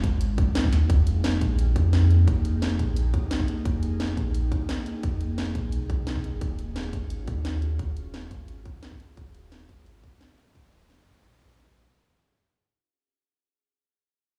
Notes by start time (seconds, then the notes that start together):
Already playing: G#3 C#4 F4 F#4
0.04 G#1, kick, closed hi-hat
0.21 closed hi-hat
0.38 kick, closed hi-hat
0.55 snare, closed hi-hat
0.64 kick
0.73 D#2, snare, closed hi-hat
0.90 F1 A#3 D#4 G4 G#4, kick, closed hi-hat
1.07 closed hi-hat
1.24 snare, closed hi-hat
1.41 A#1, kick, closed hi-hat
1.59 closed hi-hat
1.76 F2, kick, closed hi-hat
1.93 snare, closed hi-hat
2.11 closed hi-hat
2.28 F1, kick, closed hi-hat
2.45 closed hi-hat
2.62 snare, closed hi-hat
2.79 A#1, kick, closed hi-hat
2.96 closed hi-hat
3.14 kick, closed hi-hat
3.31 snare, closed hi-hat
3.40 kick
3.48 closed hi-hat
3.65 F1, kick, closed hi-hat
3.83 closed hi-hat
4.00 snare, closed hi-hat
4.17 A#1, kick, closed hi-hat
4.34 closed hi-hat
4.52 kick, closed hi-hat
4.69 snare, closed hi-hat
4.86 closed hi-hat
5.03 F1, kick, closed hi-hat
5.21 closed hi-hat
5.38 snare, closed hi-hat
5.55 A#1, kick, closed hi-hat
5.72 C2, closed hi-hat
5.90 kick, closed hi-hat
6.07 snare, closed hi-hat
6.16 kick
6.24 closed hi-hat
6.33 D#1
6.41 D#1 C#4 F4 F#4, kick, closed hi-hat
6.59 closed hi-hat
6.76 snare, closed hi-hat
6.93 G#1, kick, closed hi-hat
7.10 closed hi-hat
7.28 D#2, kick, closed hi-hat
7.45 snare, closed hi-hat
7.62 closed hi-hat
7.79 D#1, kick, closed hi-hat
7.97 closed hi-hat
8.14 snare, closed hi-hat
8.31 G#1, kick, closed hi-hat
8.48 closed hi-hat
8.65 kick, closed hi-hat
8.83 snare, closed hi-hat
8.92 kick
9.00 closed hi-hat
9.17 D#1, kick, closed hi-hat
9.35 closed hi-hat
9.52 snare, closed hi-hat
9.69 G#1, kick, closed hi-hat
9.86 closed hi-hat
10.04 kick, closed hi-hat
10.21 snare, closed hi-hat
10.38 closed hi-hat
10.55 D#1, kick, closed hi-hat
10.73 closed hi-hat
10.90 snare, closed hi-hat
11.07 G#1, kick, closed hi-hat
11.24 A#1, closed hi-hat
11.41 kick, closed hi-hat
11.59 snare, closed hi-hat
11.67 kick
11.76 closed hi-hat
11.85 C#2